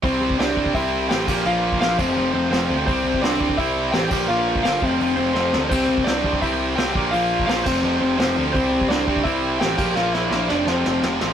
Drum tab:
CC |--------------x-|------x---------|--------------x-|----------------|
HH |o---o---o---o---|----o-------o---|o---o---o---o---|----o---o-------|
SD |----o-------o---|----o-------o---|----o-------o---|----o-------o-o-|
BD |o--o--ooo-----o-|---o--o---------|o--o--ooo-----o-|---o--o---------|

CC |x---------------|------x---------|--------------x-|----------------|
HH |o---o---o---o---|o---o-------o---|o---o---o---o---|----------------|
SD |----o-------o---|----o-------o---|----o-------o---|o-o-o-o-o-o-o-o-|
BD |o--o--ooo-----o-|---o--o---------|o--o--ooo-----o-|----------------|